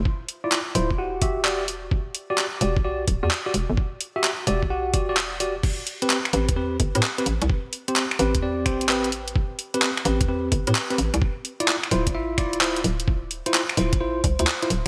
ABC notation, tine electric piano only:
X:1
M:4/4
L:1/16
Q:"Swing 16ths" 1/4=129
K:Am
V:1 name="Tine electric piano"
z3 [EFd] z2 [EFc] z [^FG^f]2 [FGe] z [FGd] z3 | z3 [^FGd] z2 [FGd] z [FGd] z2 [FGd] z [FGd] z2 | z3 [^FGe] z2 [FGd] z [FG^f]2 [FGd] [FGd] z2 [FGd] z | z3 [CGB] z2 [CGB] z [CGB] z2 [CGB] z [CGB] z2 |
z3 [CGc] z2 [CGB] z [CGd]2 [CGc] z [CGB] z3 | z3 [CGB] z2 [CGB] z [CGB] z2 [CGB] z [CGB] z2 | z3 [EFd] z2 [EFc] z [EFe]2 [EFd] z [EFc] z3 | z3 [EFc] z2 [EFc] z [EFc] z2 [EFc] z [EFc] z2 |]